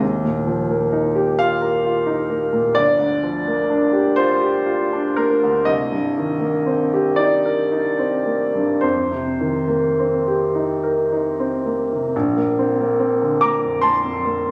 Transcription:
0.00 2.69 D#2 soft
0.25 0.62 A#2 soft
0.47 0.85 F3 soft
0.71 1.08 A#3 soft
0.93 1.30 D#4 soft
1.15 1.53 G4 soft
1.39 1.77 F4 soft
1.39 2.74 F5 medium
1.61 1.98 A#4 soft
1.85 2.21 F4 soft
2.06 2.43 D#4 soft
2.30 2.66 A#3 soft
2.53 2.75 A#2 soft
2.75 5.65 G1 soft
2.75 4.15 D5 medium
2.99 3.35 D2 soft
3.23 3.59 F3 soft
3.48 3.83 A#3 soft
3.70 4.07 D4 soft
3.93 4.30 G4 soft
4.16 4.56 F4 medium
4.16 5.17 C5 medium
4.41 4.81 G4 soft
4.66 5.07 F4 soft
4.93 5.34 D4 soft
5.16 5.58 A#3 soft
5.16 5.68 A#4 medium
5.43 5.68 D2 soft
5.65 8.78 C2 medium
5.65 7.16 D#5 medium
5.92 6.32 G2 soft
6.18 6.57 D#3 soft
6.40 6.81 A#3 soft
6.66 7.07 C4 soft
6.94 7.34 G4 soft
7.16 7.61 D#4 soft
7.16 8.82 D5 medium
7.46 7.88 A#4 soft
7.72 8.16 D#4 soft
7.99 8.43 C4 soft
8.26 8.71 A#3 soft
8.54 8.83 G2 soft
8.81 12.10 F2 soft
8.81 11.64 C5 medium
9.11 9.57 C3 soft
9.41 9.86 D#3 soft
9.68 10.14 A#3 soft
9.99 10.43 C4 soft
10.28 10.71 G4 soft
10.55 10.98 D#4 soft
10.83 11.27 A#4 soft
11.12 11.55 D#4 soft
11.40 11.82 C4 soft
11.66 12.06 A#3 soft
11.93 12.15 C3 soft
12.16 14.51 A#1 soft
12.37 12.71 A#3 soft
12.59 12.92 C4 soft
12.81 13.14 A#3 soft
12.99 13.34 C4 soft
13.21 13.55 D3 soft
13.41 13.77 A#3 soft
13.41 13.82 A#5 medium
13.41 13.84 D6 medium
13.62 13.97 F2 soft
13.81 14.18 A#3 soft
13.81 14.51 A5 medium
13.81 14.51 C6 medium
14.05 14.39 F2 soft
14.25 14.51 A#3 soft
14.47 14.51 F2 soft

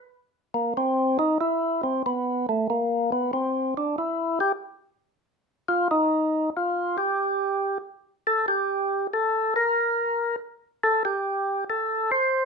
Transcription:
0.54 0.74 A#3 medium
0.77 1.18 C4 medium
1.19 1.38 D#4 medium
1.41 1.82 E4 medium
1.83 2.03 C4 medium
2.06 2.46 B3 medium
2.49 2.68 A3 medium
2.70 3.11 A#3 medium
3.12 3.31 B3 medium
3.33 3.74 C4 medium
3.77 3.96 D4 medium
3.98 4.39 E4 medium
4.40 4.52 G4 medium
5.68 5.88 F4 medium
5.91 6.50 D#4 medium
6.57 6.97 F4 medium
6.98 7.78 G4 medium
8.27 8.46 A4 loud
8.48 9.07 G4 medium
9.13 9.54 A4 medium
9.56 10.36 A#4 medium
10.83 11.03 A4 medium
11.05 11.64 G4 medium
11.70 12.11 A4 medium
12.12 12.45 C5 medium

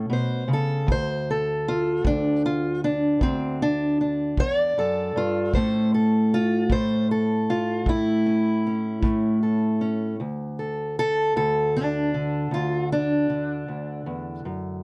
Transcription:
0.00 0.83 C#4 soft
0.00 0.12 A4 medium
0.10 0.47 B2 medium
0.10 0.51 C5 medium
0.48 0.88 C#3 medium
0.53 0.90 A4 medium
0.87 2.03 D2 medium
0.87 kick medium
0.92 1.29 C5 loud
1.30 2.45 A4 medium
1.68 2.06 F4 medium
2.04 3.20 D2 medium
2.04 2.45 D4 medium
2.04 kick medium
2.46 2.84 F4 medium
2.84 3.61 D4 medium
3.21 4.38 D2 medium
3.21 3.61 C4 medium
3.21 kick medium
3.62 4.00 D4 loud
4.01 5.16 D4 soft
4.37 4.77 E2 medium
4.37 4.58 C#5 loud
4.37 kick medium
4.58 5.54 D5 loud
4.78 5.15 F#2 medium
4.78 5.55 A4 medium
5.16 5.54 G2 medium
5.16 5.55 F4 medium
5.54 6.70 A2 medium
5.54 10.16 A3 medium
5.54 8.25 C#4 soft
5.54 5.93 C5 medium
5.54 kick medium
5.94 6.71 A4 medium
6.34 6.72 F4 loud
6.70 7.86 A2 medium
6.70 7.10 C5 loud
6.70 kick medium
7.11 7.88 A4 medium
7.50 7.88 F4 medium
7.86 9.02 A2 medium
7.86 9.42 E4 loud
7.86 kick medium
8.26 8.65 C#4 soft
8.67 9.80 C#4 soft
9.03 10.19 A2 medium
9.03 kick medium
9.43 10.15 A4 soft
9.81 10.15 C#4 soft
10.20 11.35 D2 medium
10.59 10.97 A4 soft
10.99 11.35 A4 loud
11.36 12.50 D2 medium
11.36 11.75 A4 medium
11.77 12.53 D4 medium
12.14 13.28 D3 soft
12.51 13.67 D2 medium
12.51 12.92 F4 medium
12.92 14.47 D4 loud
13.30 14.83 D3 soft
13.68 14.06 D2 medium
14.06 14.45 E2 medium
14.45 14.83 F#2 medium

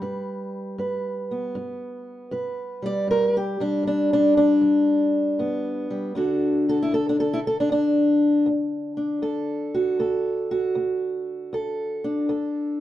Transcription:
0.00 0.73 G2 medium
0.00 2.82 G3 soft
0.00 0.79 B4 soft
0.78 1.50 G2 medium
0.78 2.31 B4 soft
1.31 3.35 B3 soft
1.55 2.27 G2 medium
2.31 3.03 G2 medium
2.31 2.83 B4 medium
2.82 3.59 G3 soft
2.82 3.10 D5 loud
3.07 3.80 G2 medium
3.07 3.35 A#4 medium
3.37 3.61 G4 medium
3.60 5.89 G3 soft
3.60 3.86 D4 medium
3.83 4.56 G2 medium
3.87 4.12 D4 medium
4.13 4.36 D4 medium
4.37 5.90 D4 loud
4.61 5.33 G2 medium
5.39 6.11 G2 medium
5.39 6.16 B3 soft
5.90 6.16 G3 soft
6.15 6.87 D2 medium
6.15 12.30 D3 soft
6.15 7.09 D4 soft
6.15 6.68 F#4 soft
6.15 6.69 A4 soft
6.69 6.82 F#4 soft
6.69 6.85 A4 medium
6.83 6.92 E4 medium
6.92 7.64 D2 medium
6.92 7.09 A4 medium
7.09 7.18 D4 medium
7.20 7.45 A4 medium
7.33 7.38 E4 medium
7.47 7.60 A4 medium
7.60 7.69 D4 medium
7.69 8.41 D2 medium
7.69 8.47 D4 loud
8.46 9.18 D2 medium
8.97 12.04 D4 soft
9.22 9.94 D2 medium
9.22 9.99 A4 medium
9.74 10.51 F#4 medium
9.99 10.71 D2 medium
9.99 11.53 A4 medium
10.51 12.27 F#4 medium
10.75 11.47 D2 medium
11.53 12.25 D2 medium
11.53 12.27 A4 medium
12.04 12.80 D4 medium
12.29 12.80 D2 medium
12.29 12.80 A4 medium

